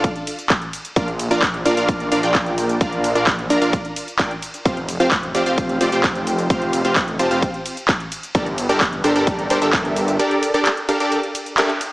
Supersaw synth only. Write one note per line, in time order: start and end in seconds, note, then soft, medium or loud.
0.00 0.12 D4 loud
0.00 0.12 F4 medium
0.00 0.12 A4 medium
0.00 0.12 D5 medium
0.00 0.12 F5 loud
0.96 1.08 D4 medium
0.96 1.08 F4 medium
0.96 1.08 A#4 medium
0.96 1.08 D5 medium
0.96 1.08 F5 medium
1.31 1.43 D4 loud
1.31 1.43 F4 medium
1.31 1.43 A#4 medium
1.31 1.43 D5 medium
1.31 1.43 F5 loud
1.65 1.75 D4 loud
1.65 1.75 F4 loud
1.65 1.75 A#4 medium
1.65 1.75 D5 medium
1.65 1.75 F5 loud
1.77 2.09 D4 medium
1.77 2.09 F4 medium
1.77 2.09 A#4 medium
1.77 2.09 D5 medium
1.77 2.09 F5 loud
2.12 2.20 D4 loud
2.12 2.20 F4 medium
2.12 2.20 A#4 medium
2.12 2.20 D5 medium
2.12 2.20 F5 loud
2.23 2.78 D4 medium
2.23 2.78 F4 medium
2.23 2.78 A#4 medium
2.23 2.78 D5 medium
2.23 2.78 G5 medium
2.81 3.13 D4 medium
2.81 3.13 F4 medium
2.81 3.13 A#4 medium
2.81 3.13 D5 medium
2.81 3.13 F5 medium
3.15 3.35 D4 medium
3.15 3.35 F4 medium
3.15 3.35 A#4 medium
3.15 3.35 D5 medium
3.15 3.35 F5 medium
3.50 3.60 D4 loud
3.50 3.60 F4 medium
3.50 3.60 A#4 medium
3.50 3.60 D5 medium
3.50 3.60 A#5 loud
3.62 3.81 D4 loud
3.62 3.81 F4 medium
3.62 3.81 A#4 medium
3.62 3.81 D5 medium
3.62 3.81 F5 loud
4.19 4.32 D4 loud
4.19 4.32 F4 medium
4.19 4.31 A#4 medium
4.19 4.31 D5 medium
4.19 4.31 G5 loud
4.65 4.78 C4 medium
4.65 4.78 F4 medium
4.65 4.78 G4 medium
4.65 4.78 C5 medium
4.65 4.78 F5 medium
5.00 5.12 C4 loud
5.00 5.12 F4 medium
5.00 5.12 G4 medium
5.00 5.12 C5 medium
5.00 5.12 F5 loud
5.35 5.45 C4 loud
5.35 5.45 F4 loud
5.35 5.45 G4 loud
5.35 5.45 C5 medium
5.35 5.45 D5 loud
5.46 5.78 C4 medium
5.46 5.78 F4 medium
5.46 5.78 G4 medium
5.46 5.78 C5 medium
5.46 5.78 F5 medium
5.81 5.90 C4 loud
5.81 5.90 F4 medium
5.81 5.90 G4 medium
5.81 5.90 C5 medium
5.81 5.90 D5 loud
5.92 6.47 C4 medium
5.92 6.47 F4 medium
5.92 6.47 G4 medium
5.92 6.47 C5 medium
5.92 6.47 G5 medium
6.50 6.82 C4 medium
6.50 6.82 F4 medium
6.50 6.82 G4 medium
6.50 6.82 C5 medium
6.50 6.82 F5 loud
6.85 7.04 C4 medium
6.85 7.04 F4 medium
6.85 7.04 G4 medium
6.85 7.04 C5 medium
6.85 7.04 F5 medium
7.19 7.29 C4 loud
7.19 7.29 F4 medium
7.19 7.29 G4 medium
7.19 7.29 C5 medium
7.19 7.29 A5 loud
7.31 7.50 C4 loud
7.31 7.50 F4 medium
7.31 7.50 G4 medium
7.31 7.50 C5 medium
7.31 7.50 F5 loud
8.35 8.47 D4 medium
8.35 8.47 G4 medium
8.35 8.47 A4 medium
8.35 8.47 A#4 medium
8.35 8.47 D5 medium
8.69 8.81 D4 loud
8.69 8.81 G4 medium
8.69 8.81 A4 medium
8.69 8.81 A#4 medium
8.69 8.81 D5 loud
9.04 9.14 D4 loud
9.04 9.14 G4 medium
9.04 9.14 A4 loud
9.04 9.14 A#4 loud
9.04 9.14 C5 loud
9.16 9.47 D4 medium
9.16 9.47 G4 medium
9.16 9.47 A4 medium
9.16 9.47 A#4 medium
9.16 9.47 D5 medium
9.50 9.59 D4 loud
9.50 9.59 G4 medium
9.50 9.59 A4 medium
9.50 9.59 A#4 medium
9.50 9.59 C5 loud
9.62 10.17 D4 medium
9.62 10.17 G4 medium
9.62 10.17 A4 medium
9.62 10.17 A#4 medium
9.62 10.17 E5 medium
10.19 10.51 D4 medium
10.19 10.51 G4 medium
10.19 10.51 A4 medium
10.19 10.51 A#4 medium
10.19 10.51 D5 medium
10.54 10.74 D4 medium
10.54 10.73 G4 medium
10.54 10.73 A4 medium
10.54 10.73 A#4 medium
10.54 10.73 D5 medium
10.89 10.98 D4 loud
10.89 10.98 G4 medium
10.89 10.98 A4 medium
10.89 10.98 A#4 medium
10.89 10.98 F5 loud
11.00 11.20 D4 loud
11.00 11.20 G4 medium
11.00 11.20 A4 medium
11.00 11.20 A#4 medium
11.00 11.20 D5 loud
11.58 11.70 D4 loud
11.58 11.70 G4 medium
11.58 11.70 A4 medium
11.58 11.70 A#4 medium
11.58 11.70 E5 loud